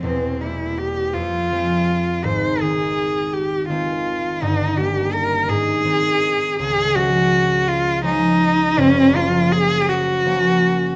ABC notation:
X:1
M:6/8
L:1/8
Q:3/8=55
K:Ab
V:1 name="Cello"
C =E G F3 | c A2 G F2 | E G B A3 | [K:Db] A G2 F E2 |
D F A G3 |]
V:2 name="Harp" clef=bass
[=E,,,=E,,C] [G,B,C]2 F,, [F,A,C]2 | [A,,,A,,] [E,A,C]3 [E,A,C]2 | [G,,,G,,] [E,B,D]2 A,, [E,A,C]2 | [K:Db] D,, [F,A,D]3 [F,A,D]2 |
[G,,,G,,] [F,B,D]3 [F,B,D]2 |]